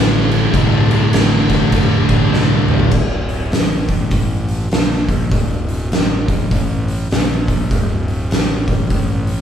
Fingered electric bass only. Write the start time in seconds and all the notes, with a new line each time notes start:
Already playing: A1
0.54 C2
1.14 A1
1.73 F1
2.09 A1
2.32 C2
2.92 D1
3.52 A1
4.11 A1
4.72 A#1
5.32 D1
5.92 A1
6.52 A1
7.12 A#1
7.71 D1
8.31 A1
8.91 A1